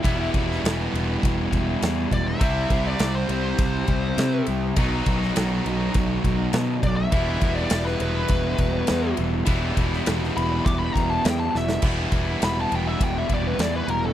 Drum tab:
CC |----------------|----------------|----------------|----------------|
RD |x-x-x-x-x-x-x-x-|x-x-x-x-x-x-x-x-|x-x-x-x-x-x-x-x-|x-x-x-x-x-x-x-x-|
SD |---oo-------o---|----o-------o---|---oo-------o---|----oo------o---|
BD |o-o-----o-o---o-|o-o-----o-o-----|o-o-----o-o---o-|o-o-----o-o-----|

CC |----------------|x---------------|
RD |x-x-x-x-x-x-x---|--x-x-x-x-x-x-x-|
SD |---ooo------o-oo|----o-------o---|
BD |o-o-----o-o-----|o-o-----o-o-----|